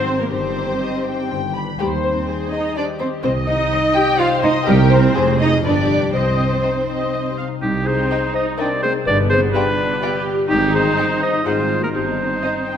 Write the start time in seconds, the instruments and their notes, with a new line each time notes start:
Already playing: tuba G#1, double bass section G#1, harp G#2 D#4 C5, cello section C4, marimba C5, violin section C5, viola section C5
0.00 harp F#3
0.17 harp D#4 D#5, violin section A#4, marimba A#4
0.21 cello section A#3
0.31 tuba G1, double bass section G1, harp G2, cello section C4, viola section G4, violin section C5, marimba C5
0.50 harp D#3
0.65 harp G3
0.81 harp D#4, violin section D#5
0.98 harp C5
1.07 violin section G5
1.15 harp G4
1.30 double bass section G1, tuba G1, harp G2
1.46 harp G3
1.55 violin section B5
1.63 harp D4 B4
1.79 double bass section D#2, tuba D#2, harp D#3, cello section G3, violin section G4, marimba G4, viola section C5
1.97 harp G3
2.04 cello section C4, marimba C5, violin section C5
2.12 harp D#4
2.28 viola section G#4, violin section C5, harp C5
2.45 harp G4
2.51 cello section D#4, violin section D#5, marimba D#5
2.61 harp D#5
2.76 cello section D4, viola section G4, violin section C5 D5, marimba D5, harp C6
2.92 harp D#5
2.99 cello section C4, violin section C5, marimba C5
3.09 harp C5
3.23 double bass section C2, tuba C2, harp C3, cello section C4, violin section C5, marimba C5, viola section D#5
3.40 harp C4
3.47 cello section D#4, marimba D#5, violin section D#5
3.56 harp G3
3.72 harp D#4, violin section C5
3.89 harp C5
3.95 cello section G4, violin section G5, marimba G5
4.05 harp G4
4.19 cello section F4, violin section C5 F5, viola section C5, harp D#5, marimba F5
4.36 harp G4
4.42 cello section D#4, violin section D#5, marimba D#5
4.53 harp D#4
4.66 tuba C2, double bass section C2, harp C3, cello section G3, violin section G4 A#4, marimba G4, viola section A#4
4.84 harp A#3
4.90 cello section C4, marimba C5, violin section C5
5.00 harp E4 C5
5.15 double bass section F1, tuba F1, harp F2, violin section G#4, viola section G#4
5.32 harp G#3
5.40 cello section D#4, marimba D#5, violin section D#5
5.48 harp F4 C5
5.63 tuba G1, double bass section G1, harp G2, cello section D4, viola section G4, violin section B4 D5, marimba D5
5.81 harp G3
5.97 harp D4 B4
6.13 double bass section C2, tuba C2, harp C3, cello section C4, violin section C5, marimba C5, viola section D#5
6.31 harp C4
6.48 harp G3
6.62 harp D#4, viola section C5, violin section D#5
6.81 harp C5
6.88 viola section D#5
6.97 harp G4
7.13 violin section D#5, harp D#5
7.31 harp G4
7.38 viola section F5
7.48 harp D#4
7.61 double bass section C2, tuba C2, harp C3, cello section G3, marimba D#4, viola section D#4, oboe G4
7.80 harp C4
7.86 cello section C4, marimba G#4, oboe C5
7.96 harp G3
8.11 violin section D#4 D#5 G5, harp D#4
8.27 harp C5
8.34 cello section D#4, marimba C5, oboe D#5
8.44 harp G4
8.58 viola section C4, cello section D4, violin section D#4 D#5 G5, marimba A#4, oboe D5, harp D#5
8.75 harp G4
8.83 cello section C4, marimba G#4, oboe C5
8.91 harp D#4
9.05 tuba G1, double bass section G1, harp G2, viola section B3, cello section D4, marimba B4, oboe D5
9.23 harp D3
9.30 cello section C4, marimba G#4, oboe C5
9.40 harp G3
9.53 cello section B3, viola section D4, violin section F4 D5 G5, harp F4, marimba G4, oboe B4
9.71 harp D5
9.87 harp G4
10.01 violin section F4 D5 G5, viola section G4, harp F5
10.19 harp G4
10.35 harp F4
10.48 tuba G#1, double bass section G#1, harp G#2, cello section G3, marimba D#4, viola section D#4, oboe G4
10.67 harp D#3
10.74 cello section C4, marimba G#4, oboe C5
10.82 harp G3
10.97 violin section D#4 C5 G5, harp D#4
11.15 harp C5
11.22 cello section D#4, marimba C5, oboe D#5
11.30 harp G4
11.45 tuba G#1, double bass section G#1, harp G#2, cello section C4, violin section D#4 D#5 F#5, viola section F4, marimba G#4, oboe C5
11.63 harp G#3
11.79 cello section A#3, harp F#4 D#5, marimba F#4
11.84 oboe A#4
11.95 double bass section G1, tuba G1, harp G2, cello section C4, viola section D#4, marimba G4, oboe C5
12.12 harp G3
12.28 harp C4
12.44 violin section D#4 C5 D#5, harp G4
12.60 harp D#5
12.68 violin section G5